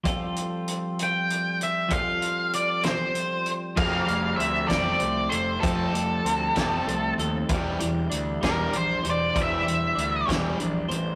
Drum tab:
CC |------|------|x-----|------|
HH |xxxxxx|xxxxxx|-xxxxx|xxxxxx|
SD |------|---o--|---o--|---o--|
BD |o-----|o-----|o--o--|o--o--|

CC |------|------|
HH |xxxxxx|xxxxxx|
SD |---o--|---o--|
BD |o--o--|o--o--|